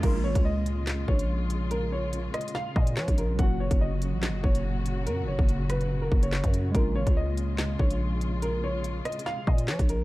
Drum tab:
CC |x-----------------------------------------------|------------------------------------------------|------------------------------------------------|------------------------------------------------|
HH |x--------x--------x-----x--------x--------x-----|x-----------x-----x-x-x----------x-----x--x-----|x--------x--------x-----x--------x--------x-----|x-----------x-----x--x-----------x-----x--x-----|
CP |------------------------x-----------------------|------------------------------------x-----------|------------------------x-----------------------|------------------------------------x-----------|
SD |------------------------o-----------------------|------------------r-----o-----------o-----------|------------------------o-----------------------|------------------r-----------------o-----------|
BD |o--------o--------------------o-----------------|------------------------------o--------o--------|o--------o--------------------o-----------------|---------o--------------------o--------o--------|

CC |------------------------------------------------|------------------------------------------------|
HH |x--------x--------x-----x--------x--------x-----|x-----------x-----x-x-x----------x-----x--x-----|
CP |------------------------x-----------------------|------------------------------------x-----------|
SD |------------------------o-----------------------|------------------r-----o-----------o-----------|
BD |o--------o--------------------o-----------------|------------------------------o--------o--------|